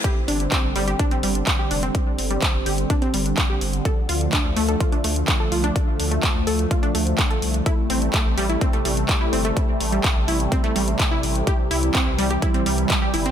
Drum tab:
HH |x-oxx-oxxxoxx-ox|x-oxx-oxxxoxx-ox|x-oxx-oxxxoxx-ox|x-oxx-oxxxoxxxox|
CP |----x-------x---|----x-------x---|----x-------x---|----x-------x---|
BD |o---o---o---o---|o---o---o---o---|o---o---o---o---|o---o---o---o---|

HH |x-oxx-oxxxoxx-ox|x-oxx-oxxxoxx-ox|x-oxx-oxxxoxx-ox|
CP |----x-------x---|----x-------x---|----x-------x---|
BD |o---o---o---o---|o---o---o---o---|o---o---o---o---|